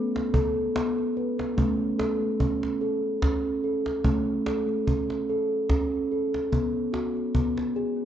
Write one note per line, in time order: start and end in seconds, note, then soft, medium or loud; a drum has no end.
0.00 0.48 A3 loud
0.00 0.33 B3 medium
0.16 cajon slap soft
0.34 0.75 A4 medium
0.34 cajon bass medium
0.76 1.16 B3 medium
0.76 cajon slap medium
0.98 cajon slap soft
1.17 1.58 B4 medium
1.17 cajon slap soft
1.39 cajon slap soft
1.57 2.96 A3 medium
1.57 1.99 C#4 medium
1.57 cajon bass soft
1.99 2.40 A4 medium
1.99 cajon slap soft
2.22 cajon slap soft
2.40 2.81 C#4 medium
2.40 cajon bass soft
2.63 cajon slap soft
2.81 3.22 A4 medium
2.81 cajon slap soft
3.22 3.64 C#4 medium
3.22 cajon bass medium
3.22 cajon slap soft
3.64 4.05 A4 medium
3.86 cajon slap soft
4.04 5.43 A3 medium
4.04 4.46 C#4 medium
4.04 cajon bass medium
4.46 4.87 A4 medium
4.46 cajon slap medium
4.69 cajon slap soft
4.87 5.29 C#4 medium
4.87 cajon bass soft
5.10 cajon slap soft
5.29 5.70 A4 medium
5.29 cajon slap soft
5.70 6.11 C#4 medium
5.70 cajon bass soft
5.70 cajon slap soft
6.11 6.52 A4 medium
6.34 cajon slap soft
6.52 7.33 B3 medium
6.52 cajon bass soft
6.93 7.34 F#4 medium
6.93 cajon slap soft
7.17 cajon slap soft
7.34 7.76 B3 medium
7.34 cajon bass soft
7.57 cajon slap soft
7.76 8.05 G#4 medium
7.76 cajon slap soft